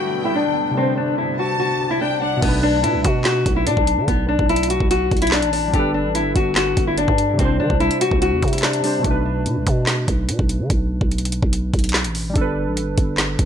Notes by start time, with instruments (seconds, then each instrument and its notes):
Already playing: ambient pad G2 D3 A3 B3, synth keys G3 D4 A4 B4, nylon-string guitar F#4, violin section G5
0.25 nylon-string guitar E4
0.35 nylon-string guitar D4
0.71 synth keys C3 G3
0.77 ambient pad C2 C3 G3 D4, nylon-string guitar C4, synth keys D4
0.83 synth keys C5
0.97 nylon-string guitar D4
1.18 nylon-string guitar E4
1.39 nylon-string guitar F#4, violin section A5
1.59 nylon-string guitar F#4
1.91 nylon-string guitar E4
2.01 nylon-string guitar D4, violin section G5
2.21 nylon-string guitar D4, violin section F#5
2.37 synth keys B2 A3
2.42 808-style bass B1, nylon-string guitar B3, synth keys D4, kick, closed hi-hat, crash
2.48 synth keys B4
2.63 nylon-string guitar D4
2.83 808-style bass B2, nylon-string guitar E4, closed hi-hat
2.94 808-style bass B1
3.04 808-style bass B2, nylon-string guitar F#4, kick, closed hi-hat
3.25 nylon-string guitar F#4, snare, clap, closed hi-hat
3.46 808-style bass B1, kick, closed hi-hat
3.56 nylon-string guitar E4
3.66 808-style bass B2, nylon-string guitar D4, closed hi-hat
3.77 808-style bass B1, kick
3.87 closed hi-hat
3.98 808-style bass D3
4.08 808-style bass B1, nylon-string guitar B3, kick, closed hi-hat
4.29 nylon-string guitar D4
4.39 808-style bass B1, kick
4.49 nylon-string guitar E4, closed hi-hat
4.56 closed hi-hat
4.63 closed hi-hat
4.70 nylon-string guitar F#4, closed hi-hat
4.80 808-style bass B1, kick
4.91 nylon-string guitar F#4, closed hi-hat
5.11 808-style bass B1, kick, closed hi-hat
5.17 closed hi-hat
5.22 nylon-string guitar E4, closed hi-hat
5.27 closed hi-hat
5.31 nylon-string guitar D4, snare, clap
5.42 808-style bass A1, closed hi-hat
5.53 nylon-string guitar D4, open hi-hat
5.68 synth keys G3 D4
5.74 808-style bass G1, nylon-string guitar G4, synth keys A4, kick, closed hi-hat
5.79 synth keys B4
5.94 nylon-string guitar D4
6.05 808-style bass A1
6.15 nylon-string guitar E4, closed hi-hat
6.20 808-style bass G1
6.36 808-style bass G1, nylon-string guitar F#4, kick, closed hi-hat
6.56 nylon-string guitar F#4, snare, clap, closed hi-hat
6.77 808-style bass G1, kick, closed hi-hat
6.87 nylon-string guitar E4
6.97 nylon-string guitar D4, closed hi-hat
7.08 808-style bass G2, kick
7.18 closed hi-hat
7.33 synth keys C3 G3
7.39 808-style bass C2, nylon-string guitar C4, synth keys D4, kick, closed hi-hat
7.45 synth keys C5
7.60 808-style bass E3, nylon-string guitar D4
7.70 808-style bass C2, kick
7.80 nylon-string guitar E4, closed hi-hat
7.91 closed hi-hat
8.01 nylon-string guitar F#4, closed hi-hat
8.11 808-style bass C2, kick
8.22 nylon-string guitar F#4, closed hi-hat
8.32 808-style bass E2
8.42 808-style bass C3, kick, closed hi-hat
8.48 closed hi-hat
8.53 nylon-string guitar E4, closed hi-hat
8.58 closed hi-hat
8.62 nylon-string guitar D4, snare, clap
8.73 closed hi-hat
8.81 synth keys C3 G3 D4, nylon-string guitar D4, open hi-hat
8.87 synth keys C5
8.99 synth keys B2 A3
9.04 808-style bass B1, synth keys D4, kick, closed hi-hat
9.11 synth keys B4
9.46 808-style bass B2, closed hi-hat
9.56 808-style bass B1
9.67 808-style bass B2, kick, closed hi-hat
9.87 snare, clap, closed hi-hat
10.08 808-style bass B1, kick, closed hi-hat
10.29 808-style bass B2, closed hi-hat
10.39 808-style bass B1, kick
10.49 closed hi-hat
10.60 808-style bass D3
10.70 808-style bass B1, kick, closed hi-hat
11.01 808-style bass B1, kick
11.11 closed hi-hat
11.18 closed hi-hat
11.25 closed hi-hat
11.32 closed hi-hat
11.42 808-style bass B1, kick
11.53 closed hi-hat
11.74 808-style bass B1, kick, closed hi-hat
11.79 closed hi-hat
11.84 closed hi-hat
11.89 closed hi-hat
11.94 snare, clap
12.04 808-style bass A1, closed hi-hat
12.15 open hi-hat
12.30 synth keys G3 D4
12.36 808-style bass G1, synth keys A4, kick, closed hi-hat
12.41 synth keys B4
12.67 808-style bass A1
12.77 closed hi-hat
12.82 808-style bass G1
12.98 808-style bass G1, kick, closed hi-hat
13.18 snare, clap, closed hi-hat
13.39 808-style bass G1, kick, closed hi-hat